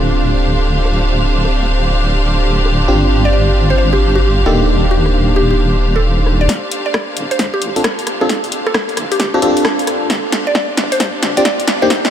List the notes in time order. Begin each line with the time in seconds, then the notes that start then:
Already playing: D1 C4 D4 F4 G4 A4 C5 F5
0.85 cross-stick
1.45 cross-stick
2.66 cross-stick
2.88 G1 C4 D4 F4 G4
3.25 D5
3.33 D5
3.70 C5
3.78 C5
3.93 G4
4.15 G4
4.46 D#1 A#3 D4 D#4 G4 A4, cross-stick
4.91 G4
5.06 cross-stick
5.36 G4
5.51 G4
5.81 shaker
5.96 A4
6.26 cross-stick, shaker
6.41 D5, shaker
6.49 D1, kick, snare, closed hi-hat
6.71 closed hi-hat
6.86 D5
6.94 D5, kick, cross-stick, snare
7.17 D1, closed hi-hat
7.31 C5, closed hi-hat
7.39 D2 C5, kick, snare, closed hi-hat
7.54 G4
7.62 A1, closed hi-hat
7.76 C4 D4 F4 A4, closed hi-hat
7.84 kick, cross-stick, snare, closed hi-hat
7.99 closed hi-hat
8.07 cross-stick, closed hi-hat
8.21 C4 D4 F4 A4
8.29 D1, kick, snare, closed hi-hat
8.44 closed hi-hat
8.52 closed hi-hat
8.66 A4, cross-stick
8.74 kick, cross-stick, snare
8.89 closed hi-hat
8.97 D1, cross-stick, closed hi-hat
9.12 G4, closed hi-hat
9.20 D2 G4, kick, snare, closed hi-hat
9.34 C4 D4 F4 G4 A4
9.42 A1 C4 D4 F4 A4, closed hi-hat
9.57 closed hi-hat
9.65 kick, cross-stick, snare
9.79 closed hi-hat
9.87 cross-stick, closed hi-hat
10.10 G1 D4, kick, snare, closed hi-hat
10.32 snare, closed hi-hat
10.47 D5
10.55 D5, kick, snare
10.77 G1, snare, closed hi-hat
10.92 C5, closed hi-hat
11.00 G2, kick, snare, closed hi-hat
11.23 D2, snare, closed hi-hat
11.37 C4 D4 F4 G4 D5, closed hi-hat
11.45 D5, kick, snare, closed hi-hat
11.60 closed hi-hat
11.68 snare, closed hi-hat
11.82 A#3 D4 D#4 G4 C5
11.90 D#1, kick, snare, closed hi-hat
12.05 snare, closed hi-hat